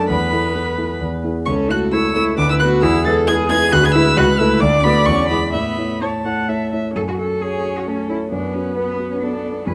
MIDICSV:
0, 0, Header, 1, 5, 480
1, 0, Start_track
1, 0, Key_signature, 3, "major"
1, 0, Tempo, 451807
1, 103, Time_signature, 3, 2, 24, 8
1, 5382, Tempo, 474308
1, 7302, Tempo, 451467
1, 10258, End_track
2, 0, Start_track
2, 0, Title_t, "Violin"
2, 0, Program_c, 0, 40
2, 99, Note_on_c, 0, 83, 101
2, 1053, Note_off_c, 0, 83, 0
2, 1549, Note_on_c, 0, 85, 92
2, 1634, Note_off_c, 0, 85, 0
2, 1811, Note_on_c, 0, 90, 95
2, 1896, Note_off_c, 0, 90, 0
2, 2049, Note_on_c, 0, 88, 99
2, 2282, Note_off_c, 0, 88, 0
2, 2287, Note_on_c, 0, 88, 119
2, 2372, Note_off_c, 0, 88, 0
2, 2525, Note_on_c, 0, 86, 124
2, 2642, Note_off_c, 0, 86, 0
2, 2657, Note_on_c, 0, 88, 113
2, 2702, Note_off_c, 0, 88, 0
2, 2758, Note_on_c, 0, 90, 109
2, 2843, Note_off_c, 0, 90, 0
2, 2998, Note_on_c, 0, 88, 104
2, 3233, Note_off_c, 0, 88, 0
2, 3242, Note_on_c, 0, 93, 108
2, 3327, Note_off_c, 0, 93, 0
2, 3476, Note_on_c, 0, 92, 115
2, 3561, Note_off_c, 0, 92, 0
2, 3711, Note_on_c, 0, 92, 127
2, 3954, Note_on_c, 0, 90, 127
2, 3970, Note_off_c, 0, 92, 0
2, 4088, Note_on_c, 0, 92, 127
2, 4104, Note_off_c, 0, 90, 0
2, 4188, Note_off_c, 0, 92, 0
2, 4195, Note_on_c, 0, 88, 127
2, 4432, Note_on_c, 0, 90, 120
2, 4448, Note_off_c, 0, 88, 0
2, 4659, Note_on_c, 0, 88, 104
2, 4675, Note_off_c, 0, 90, 0
2, 4890, Note_on_c, 0, 86, 113
2, 4906, Note_off_c, 0, 88, 0
2, 5137, Note_on_c, 0, 83, 125
2, 5153, Note_off_c, 0, 86, 0
2, 5369, Note_on_c, 0, 85, 116
2, 5385, Note_off_c, 0, 83, 0
2, 5601, Note_off_c, 0, 85, 0
2, 5607, Note_on_c, 0, 83, 103
2, 5847, Note_off_c, 0, 83, 0
2, 5854, Note_on_c, 0, 83, 88
2, 6350, Note_on_c, 0, 81, 73
2, 6365, Note_off_c, 0, 83, 0
2, 7067, Note_off_c, 0, 81, 0
2, 7795, Note_on_c, 0, 73, 72
2, 8272, Note_on_c, 0, 69, 64
2, 8288, Note_off_c, 0, 73, 0
2, 8742, Note_off_c, 0, 69, 0
2, 8748, Note_on_c, 0, 71, 71
2, 9708, Note_on_c, 0, 69, 68
2, 9724, Note_off_c, 0, 71, 0
2, 10185, Note_off_c, 0, 69, 0
2, 10190, Note_on_c, 0, 68, 68
2, 10258, Note_off_c, 0, 68, 0
2, 10258, End_track
3, 0, Start_track
3, 0, Title_t, "Viola"
3, 0, Program_c, 1, 41
3, 97, Note_on_c, 1, 71, 87
3, 1291, Note_off_c, 1, 71, 0
3, 1566, Note_on_c, 1, 69, 87
3, 2045, Note_on_c, 1, 73, 82
3, 2061, Note_off_c, 1, 69, 0
3, 2521, Note_off_c, 1, 73, 0
3, 2527, Note_on_c, 1, 71, 99
3, 2999, Note_on_c, 1, 68, 92
3, 3015, Note_off_c, 1, 71, 0
3, 3471, Note_off_c, 1, 68, 0
3, 3478, Note_on_c, 1, 68, 96
3, 3938, Note_off_c, 1, 68, 0
3, 3945, Note_on_c, 1, 71, 116
3, 4891, Note_on_c, 1, 74, 122
3, 4907, Note_off_c, 1, 71, 0
3, 5849, Note_off_c, 1, 74, 0
3, 5855, Note_on_c, 1, 76, 79
3, 6283, Note_off_c, 1, 76, 0
3, 6337, Note_on_c, 1, 73, 80
3, 6418, Note_off_c, 1, 73, 0
3, 6582, Note_on_c, 1, 78, 74
3, 6821, Note_on_c, 1, 76, 75
3, 6836, Note_off_c, 1, 78, 0
3, 7058, Note_off_c, 1, 76, 0
3, 7064, Note_on_c, 1, 76, 69
3, 7292, Note_off_c, 1, 76, 0
3, 7298, Note_on_c, 1, 61, 65
3, 8704, Note_off_c, 1, 61, 0
3, 8743, Note_on_c, 1, 59, 64
3, 10174, Note_on_c, 1, 61, 69
3, 10190, Note_off_c, 1, 59, 0
3, 10258, Note_off_c, 1, 61, 0
3, 10258, End_track
4, 0, Start_track
4, 0, Title_t, "Cello"
4, 0, Program_c, 2, 42
4, 100, Note_on_c, 2, 59, 85
4, 1053, Note_off_c, 2, 59, 0
4, 1556, Note_on_c, 2, 61, 106
4, 1806, Note_on_c, 2, 66, 90
4, 1822, Note_off_c, 2, 61, 0
4, 2050, Note_on_c, 2, 64, 78
4, 2066, Note_off_c, 2, 66, 0
4, 2276, Note_off_c, 2, 64, 0
4, 2283, Note_on_c, 2, 64, 95
4, 2514, Note_off_c, 2, 64, 0
4, 2521, Note_on_c, 2, 62, 89
4, 2645, Note_on_c, 2, 64, 98
4, 2661, Note_off_c, 2, 62, 0
4, 2772, Note_on_c, 2, 66, 121
4, 2788, Note_off_c, 2, 64, 0
4, 3008, Note_on_c, 2, 64, 122
4, 3024, Note_off_c, 2, 66, 0
4, 3240, Note_off_c, 2, 64, 0
4, 3246, Note_on_c, 2, 69, 104
4, 3484, Note_on_c, 2, 68, 113
4, 3500, Note_off_c, 2, 69, 0
4, 3710, Note_off_c, 2, 68, 0
4, 3717, Note_on_c, 2, 68, 117
4, 3952, Note_on_c, 2, 66, 109
4, 3968, Note_off_c, 2, 68, 0
4, 4072, Note_on_c, 2, 68, 107
4, 4088, Note_off_c, 2, 66, 0
4, 4188, Note_off_c, 2, 68, 0
4, 4196, Note_on_c, 2, 64, 127
4, 4281, Note_off_c, 2, 64, 0
4, 4428, Note_on_c, 2, 66, 127
4, 4513, Note_off_c, 2, 66, 0
4, 4663, Note_on_c, 2, 64, 93
4, 4899, Note_on_c, 2, 62, 118
4, 4915, Note_off_c, 2, 64, 0
4, 5136, Note_off_c, 2, 62, 0
4, 5142, Note_on_c, 2, 59, 83
4, 5374, Note_off_c, 2, 59, 0
4, 5381, Note_on_c, 2, 61, 102
4, 5612, Note_off_c, 2, 61, 0
4, 5620, Note_on_c, 2, 59, 94
4, 5701, Note_off_c, 2, 59, 0
4, 5862, Note_on_c, 2, 59, 90
4, 6346, Note_on_c, 2, 57, 72
4, 6362, Note_off_c, 2, 59, 0
4, 7066, Note_off_c, 2, 57, 0
4, 7298, Note_on_c, 2, 69, 88
4, 7347, Note_off_c, 2, 69, 0
4, 7428, Note_on_c, 2, 66, 79
4, 7475, Note_off_c, 2, 66, 0
4, 7537, Note_on_c, 2, 69, 81
4, 7785, Note_on_c, 2, 68, 95
4, 7801, Note_off_c, 2, 69, 0
4, 8152, Note_on_c, 2, 66, 76
4, 8168, Note_off_c, 2, 68, 0
4, 8260, Note_off_c, 2, 66, 0
4, 8267, Note_on_c, 2, 61, 75
4, 8498, Note_off_c, 2, 61, 0
4, 8505, Note_on_c, 2, 64, 81
4, 8590, Note_off_c, 2, 64, 0
4, 8737, Note_on_c, 2, 62, 71
4, 8978, Note_on_c, 2, 61, 76
4, 8994, Note_off_c, 2, 62, 0
4, 9211, Note_off_c, 2, 61, 0
4, 9217, Note_on_c, 2, 59, 88
4, 9570, Note_off_c, 2, 59, 0
4, 9584, Note_on_c, 2, 61, 65
4, 9632, Note_off_c, 2, 61, 0
4, 9695, Note_on_c, 2, 62, 77
4, 10180, Note_on_c, 2, 71, 90
4, 10196, Note_off_c, 2, 62, 0
4, 10258, Note_off_c, 2, 71, 0
4, 10258, End_track
5, 0, Start_track
5, 0, Title_t, "Grand piano"
5, 0, Program_c, 3, 0
5, 0, Control_c, 3, 64, 127
5, 0, Note_on_c, 3, 42, 97
5, 0, Note_on_c, 3, 57, 69
5, 0, Note_on_c, 3, 62, 71
5, 0, Note_on_c, 3, 69, 77
5, 102, Note_on_c, 3, 40, 86
5, 124, Control_c, 3, 64, 0
5, 126, Note_off_c, 3, 69, 0
5, 130, Note_off_c, 3, 42, 0
5, 133, Note_off_c, 3, 57, 0
5, 135, Note_off_c, 3, 62, 0
5, 281, Control_c, 3, 64, 127
5, 337, Note_off_c, 3, 40, 0
5, 341, Note_on_c, 3, 59, 63
5, 344, Note_on_c, 3, 64, 60
5, 346, Note_on_c, 3, 69, 68
5, 561, Note_off_c, 3, 59, 0
5, 563, Note_off_c, 3, 64, 0
5, 564, Note_off_c, 3, 69, 0
5, 583, Note_on_c, 3, 59, 59
5, 588, Note_on_c, 3, 64, 47
5, 592, Note_on_c, 3, 69, 58
5, 804, Note_off_c, 3, 59, 0
5, 806, Note_off_c, 3, 64, 0
5, 809, Note_off_c, 3, 69, 0
5, 822, Note_on_c, 3, 59, 55
5, 828, Note_on_c, 3, 64, 54
5, 832, Note_on_c, 3, 69, 59
5, 1045, Note_off_c, 3, 59, 0
5, 1048, Note_off_c, 3, 64, 0
5, 1051, Note_off_c, 3, 69, 0
5, 1073, Note_on_c, 3, 40, 74
5, 1097, Control_c, 3, 64, 0
5, 1258, Control_c, 3, 64, 127
5, 1311, Note_off_c, 3, 40, 0
5, 1312, Note_on_c, 3, 59, 55
5, 1319, Note_on_c, 3, 64, 58
5, 1323, Note_on_c, 3, 68, 61
5, 1535, Note_off_c, 3, 59, 0
5, 1539, Note_off_c, 3, 64, 0
5, 1541, Note_off_c, 3, 68, 0
5, 1559, Note_on_c, 3, 37, 78
5, 1585, Control_c, 3, 64, 0
5, 1742, Control_c, 3, 64, 127
5, 1797, Note_off_c, 3, 37, 0
5, 1799, Note_on_c, 3, 57, 62
5, 1801, Note_on_c, 3, 64, 65
5, 1805, Note_on_c, 3, 69, 66
5, 2019, Note_off_c, 3, 57, 0
5, 2020, Note_off_c, 3, 64, 0
5, 2023, Note_off_c, 3, 69, 0
5, 2044, Note_on_c, 3, 57, 64
5, 2049, Note_on_c, 3, 64, 60
5, 2056, Note_on_c, 3, 69, 67
5, 2261, Note_off_c, 3, 57, 0
5, 2263, Note_off_c, 3, 64, 0
5, 2267, Note_off_c, 3, 69, 0
5, 2284, Note_on_c, 3, 57, 62
5, 2292, Note_on_c, 3, 64, 62
5, 2292, Note_on_c, 3, 69, 72
5, 2499, Note_off_c, 3, 57, 0
5, 2504, Note_off_c, 3, 64, 0
5, 2504, Note_off_c, 3, 69, 0
5, 2525, Note_on_c, 3, 38, 92
5, 2546, Control_c, 3, 64, 0
5, 2738, Control_c, 3, 64, 127
5, 2756, Note_off_c, 3, 38, 0
5, 2771, Note_on_c, 3, 57, 69
5, 2776, Note_on_c, 3, 59, 74
5, 2779, Note_on_c, 3, 71, 80
5, 2982, Note_off_c, 3, 57, 0
5, 2985, Note_off_c, 3, 59, 0
5, 2987, Note_off_c, 3, 71, 0
5, 3004, Note_on_c, 3, 40, 99
5, 3021, Control_c, 3, 64, 0
5, 3189, Control_c, 3, 64, 127
5, 3234, Note_off_c, 3, 40, 0
5, 3253, Note_on_c, 3, 56, 71
5, 3254, Note_on_c, 3, 64, 80
5, 3260, Note_on_c, 3, 71, 85
5, 3460, Note_off_c, 3, 56, 0
5, 3461, Note_off_c, 3, 64, 0
5, 3464, Note_off_c, 3, 71, 0
5, 3481, Note_on_c, 3, 56, 67
5, 3488, Note_on_c, 3, 64, 68
5, 3492, Note_on_c, 3, 71, 75
5, 3692, Note_off_c, 3, 56, 0
5, 3696, Note_off_c, 3, 64, 0
5, 3698, Note_off_c, 3, 71, 0
5, 3719, Note_on_c, 3, 56, 80
5, 3722, Note_on_c, 3, 64, 86
5, 3726, Note_on_c, 3, 71, 84
5, 3930, Note_off_c, 3, 56, 0
5, 3931, Note_off_c, 3, 64, 0
5, 3933, Note_off_c, 3, 71, 0
5, 3953, Note_on_c, 3, 38, 103
5, 3972, Control_c, 3, 64, 0
5, 4158, Control_c, 3, 64, 127
5, 4181, Note_off_c, 3, 38, 0
5, 4188, Note_on_c, 3, 56, 78
5, 4195, Note_on_c, 3, 64, 83
5, 4198, Note_on_c, 3, 71, 88
5, 4400, Note_off_c, 3, 56, 0
5, 4403, Note_off_c, 3, 64, 0
5, 4405, Note_off_c, 3, 71, 0
5, 4428, Note_on_c, 3, 37, 108
5, 4443, Control_c, 3, 64, 0
5, 4632, Control_c, 3, 64, 127
5, 4655, Note_off_c, 3, 37, 0
5, 4667, Note_on_c, 3, 57, 85
5, 4671, Note_on_c, 3, 64, 82
5, 4673, Note_on_c, 3, 69, 90
5, 4878, Note_off_c, 3, 57, 0
5, 4880, Note_off_c, 3, 64, 0
5, 4881, Note_off_c, 3, 69, 0
5, 4904, Note_on_c, 3, 38, 98
5, 4916, Control_c, 3, 64, 0
5, 5056, Control_c, 3, 64, 127
5, 5134, Note_off_c, 3, 38, 0
5, 5148, Note_on_c, 3, 57, 74
5, 5151, Note_on_c, 3, 66, 75
5, 5156, Note_on_c, 3, 71, 76
5, 5362, Note_off_c, 3, 57, 0
5, 5364, Note_off_c, 3, 66, 0
5, 5367, Note_off_c, 3, 71, 0
5, 5385, Note_on_c, 3, 40, 94
5, 5403, Control_c, 3, 64, 0
5, 5566, Control_c, 3, 64, 127
5, 5612, Note_off_c, 3, 40, 0
5, 5617, Note_on_c, 3, 56, 64
5, 5622, Note_on_c, 3, 64, 64
5, 5833, Note_off_c, 3, 56, 0
5, 5836, Note_off_c, 3, 64, 0
5, 5863, Note_on_c, 3, 45, 77
5, 5877, Control_c, 3, 64, 0
5, 6086, Control_c, 3, 64, 127
5, 6095, Note_off_c, 3, 45, 0
5, 6097, Note_on_c, 3, 57, 55
5, 6100, Note_on_c, 3, 64, 58
5, 6107, Note_on_c, 3, 73, 55
5, 6316, Note_off_c, 3, 57, 0
5, 6317, Note_off_c, 3, 64, 0
5, 6321, Note_off_c, 3, 73, 0
5, 6342, Note_on_c, 3, 57, 50
5, 6344, Note_on_c, 3, 64, 56
5, 6352, Note_on_c, 3, 73, 60
5, 6559, Note_off_c, 3, 57, 0
5, 6560, Note_off_c, 3, 64, 0
5, 6564, Note_off_c, 3, 73, 0
5, 6575, Note_on_c, 3, 57, 53
5, 6582, Note_on_c, 3, 64, 51
5, 6584, Note_on_c, 3, 73, 63
5, 6794, Note_off_c, 3, 57, 0
5, 6798, Note_off_c, 3, 64, 0
5, 6799, Note_off_c, 3, 73, 0
5, 6814, Note_on_c, 3, 57, 56
5, 6817, Note_on_c, 3, 64, 54
5, 6821, Note_on_c, 3, 73, 60
5, 7034, Note_off_c, 3, 57, 0
5, 7036, Note_off_c, 3, 64, 0
5, 7038, Note_off_c, 3, 73, 0
5, 7061, Note_on_c, 3, 57, 59
5, 7066, Note_on_c, 3, 64, 55
5, 7069, Note_on_c, 3, 73, 60
5, 7276, Note_off_c, 3, 57, 0
5, 7279, Note_off_c, 3, 64, 0
5, 7280, Note_off_c, 3, 73, 0
5, 7295, Note_on_c, 3, 42, 71
5, 7320, Control_c, 3, 64, 0
5, 7476, Control_c, 3, 64, 127
5, 7536, Note_on_c, 3, 66, 59
5, 7780, Note_on_c, 3, 69, 54
5, 7926, Note_off_c, 3, 66, 0
5, 8020, Note_on_c, 3, 66, 55
5, 8169, Note_off_c, 3, 69, 0
5, 8261, Note_on_c, 3, 57, 55
5, 8409, Note_off_c, 3, 66, 0
5, 8504, Note_on_c, 3, 73, 59
5, 8649, Note_off_c, 3, 57, 0
5, 8703, Note_off_c, 3, 42, 0
5, 8744, Note_on_c, 3, 42, 69
5, 8746, Note_off_c, 3, 73, 0
5, 8769, Control_c, 3, 64, 0
5, 8916, Control_c, 3, 64, 127
5, 8988, Note_on_c, 3, 66, 57
5, 9216, Note_on_c, 3, 71, 55
5, 9367, Note_off_c, 3, 66, 0
5, 9456, Note_on_c, 3, 66, 55
5, 9601, Note_off_c, 3, 71, 0
5, 9700, Note_on_c, 3, 59, 58
5, 9842, Note_off_c, 3, 66, 0
5, 9935, Note_on_c, 3, 74, 59
5, 10085, Note_off_c, 3, 59, 0
5, 10136, Note_off_c, 3, 42, 0
5, 10178, Note_off_c, 3, 74, 0
5, 10178, Note_on_c, 3, 41, 67
5, 10201, Control_c, 3, 64, 0
5, 10258, Note_off_c, 3, 41, 0
5, 10258, End_track
0, 0, End_of_file